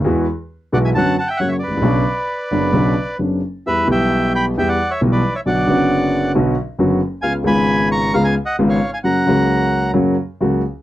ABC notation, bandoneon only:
X:1
M:4/4
L:1/16
Q:1/4=134
K:Bm
V:1 name="Bandoneon"
z6 [df] [e^g] [fa]2 [fa] [e=g] [cf] [ce] [Bd]2- | [Bd]12 z4 | [Be]2 [eg]4 [gb]2 [eg] [df]2 [ce]2 [Bd]2 [ce] | [df]8 z8 |
[^e^g]2 [gb]4 [^ac']2 [ea] [eg]2 [^df]2 [ce]2 [eg] | [f^a]8 z8 |]